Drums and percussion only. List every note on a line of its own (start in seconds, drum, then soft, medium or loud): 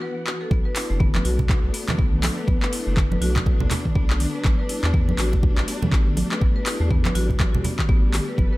0.27 clap medium
0.51 kick loud
0.51 high conga medium
0.76 clap medium
0.76 open hi-hat medium
1.00 kick loud
1.00 mid tom medium
1.15 clap medium
1.15 high conga loud
1.25 open hi-hat medium
1.39 kick medium
1.39 low conga loud
1.49 kick loud
1.49 clap medium
1.49 low conga medium
1.74 open hi-hat medium
1.88 clap medium
1.88 mid tom medium
1.88 high conga loud
1.88 low conga medium
1.99 kick loud
2.13 mid tom medium
2.23 clap loud
2.23 open hi-hat medium
2.23 high conga loud
2.48 kick loud
2.48 high conga medium
2.62 clap medium
2.73 open hi-hat medium
2.97 kick loud
2.97 clap loud
2.97 mid tom medium
3.12 high conga loud
3.22 open hi-hat medium
3.22 high conga medium
3.36 kick medium
3.36 clap medium
3.36 low conga loud
3.46 kick loud
3.46 high conga medium
3.60 low conga loud
3.71 clap loud
3.71 open hi-hat loud
3.71 low conga loud
3.85 kick medium
3.85 mid tom medium
3.95 kick loud
4.10 clap medium
4.20 open hi-hat medium
4.20 mid tom medium
4.44 kick loud
4.44 clap loud
4.44 high conga loud
4.69 open hi-hat medium
4.84 clap medium
4.94 kick loud
4.94 mid tom medium
5.09 high conga loud
5.19 clap loud
5.19 open hi-hat medium
5.33 kick medium
5.33 low conga loud
5.43 kick loud
5.43 low conga loud
5.58 clap medium
5.68 open hi-hat medium
5.82 mid tom medium
5.82 high conga loud
5.82 low conga loud
5.92 kick loud
5.92 clap loud
6.07 mid tom medium
6.17 open hi-hat medium
6.17 high conga loud
6.32 clap medium
6.41 kick loud
6.41 high conga medium
6.66 clap medium
6.66 open hi-hat medium
6.91 kick loud
6.91 mid tom medium
7.05 clap medium
7.05 high conga loud
7.15 open hi-hat medium
7.15 high conga medium
7.30 kick medium
7.30 low conga medium
7.40 kick loud
7.40 clap medium
7.40 high conga loud
7.55 low conga loud
7.64 open hi-hat medium
7.64 high conga medium
7.64 low conga medium
7.79 kick medium
7.79 clap medium
7.79 mid tom medium
7.89 kick loud
8.14 clap medium
8.14 open hi-hat medium
8.14 mid tom medium
8.38 kick loud
8.38 high conga medium